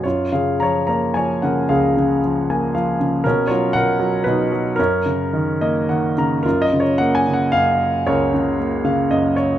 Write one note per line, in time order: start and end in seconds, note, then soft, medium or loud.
0.03 1.65 F#2 soft
0.03 0.32 F4 soft
0.03 0.30 C#5 soft
0.32 1.39 C#3 soft
0.32 0.59 G#4 soft
0.32 0.61 F5 soft
0.60 1.14 F3 soft
0.60 0.87 C#5 soft
0.60 0.85 A#5 medium
0.87 1.93 A#3 soft
0.87 1.14 C#5 soft
0.87 1.13 A#5 soft
1.14 2.20 F3 soft
1.14 1.41 C#5 soft
1.14 1.40 G#5 medium
1.42 1.95 C#3 soft
1.42 1.69 A#4 soft
1.42 1.70 F#5 soft
1.69 3.21 C#2 soft
1.69 2.96 G#4 soft
1.69 2.73 F5 soft
1.97 2.97 C#3 soft
2.24 2.73 F3 soft
2.50 3.23 A#3 soft
2.50 2.73 G#5 soft
2.75 3.24 F3 soft
2.75 3.21 F5 soft
3.01 3.25 C#3 soft
3.24 3.73 B2 soft
3.24 3.49 C#4 soft
3.24 3.50 A#4 medium
3.47 3.98 F#3 soft
3.47 3.74 F4 soft
3.47 3.75 C#5 medium
3.73 4.25 B2 soft
3.73 4.23 A#4 medium
3.73 4.22 F#5 medium
3.99 4.50 F#3 soft
4.24 4.77 B2 soft
4.24 4.74 B4 medium
4.28 4.76 D#4 soft
4.52 4.78 F#3 soft
4.76 6.42 F#2 soft
4.76 6.14 C#4 soft
4.76 6.12 A#4 medium
5.06 6.14 C#3 soft
5.33 5.88 D#3 soft
5.61 6.44 A#3 soft
5.61 5.87 D#5 medium
5.89 6.44 D#3 soft
5.89 6.16 F#5 soft
6.18 6.45 C#3 soft
6.18 6.44 A#5 medium
6.43 7.53 F#2 soft
6.43 7.23 F4 soft
6.43 6.61 A#4 medium
6.62 6.81 D#5 medium
6.73 7.26 C#3 soft
6.80 7.00 C#5 medium
6.98 8.04 A#3 soft
6.98 7.16 F#5 medium
7.15 7.35 G#5 medium
7.28 8.30 C#3 soft
7.33 7.53 F#5 medium
7.52 8.56 F#2 soft
7.52 8.07 F5 medium
8.06 9.59 C#2 soft
8.06 9.33 A#4 soft
8.06 9.32 C#5 medium
8.34 8.83 C#3 soft
8.60 9.59 A#3 soft
8.84 9.59 C#3 soft
8.84 9.09 F5 medium
9.11 9.59 F#2 soft
9.11 9.35 D#5 medium
9.36 9.59 C#5 medium